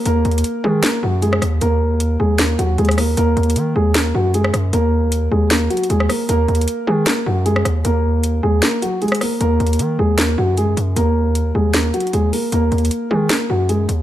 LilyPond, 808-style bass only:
\new Staff \with { instrumentName = "808-style bass" } { \clef bass \time 4/4 \key ees \minor \tempo 4 = 154 ees,8 ees,8 r8 ees8 r8 ges,4 ees,8 | ees,4. ees,4 ees,8 ees,4 | ees,8 ees,8 ees8 ees,4 ges,4 ges,8 | ees,4. ees,4 r8 ees,8 r8 |
ees,8 ees,8 r8 ees8 r8 ges,4 ees,8 | ees,4. ees,8 r2 | ees,8 ees,8 ees8 ees,4 ges,4 ges,8 | ees,4. ees,4 r8 ees,8 r8 |
ees,8 ees,8 r8 ees8 r8 ges,4 ees,8 | }